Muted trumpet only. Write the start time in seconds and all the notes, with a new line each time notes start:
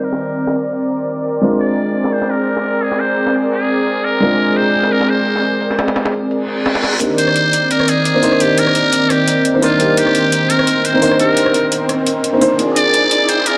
0.04 A#4
1.60 D5
2.12 C5
2.30 A#4
2.82 G#4
2.99 C5
3.52 G#4
4.04 A#4
4.56 C5
4.92 A#4
5.09 C5
7.19 C5
7.71 A#4
7.89 G#4
8.41 G4
8.58 A#4
9.11 G4
9.63 F4
9.98 G4
10.50 A#4
10.85 C5
11.20 A#4
12.76 D5
13.29 C5
13.46 A#4